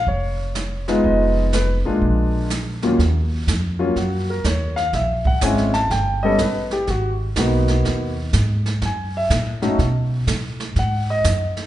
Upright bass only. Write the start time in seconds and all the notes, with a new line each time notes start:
0.07 F1
1.04 F1
1.85 A1
2.02 A#1
2.99 D#2
3.47 F2
3.96 F#2
4.44 D#2
4.93 A#1
5.42 G#1
5.90 G1
6.39 A1
6.88 G#1
7.36 B1
7.85 D#2
8.33 G#2
8.82 F#2
9.30 A#2
9.46 A2
9.62 F#2
9.79 B2
10.27 A2
10.76 G#2
11.25 F#2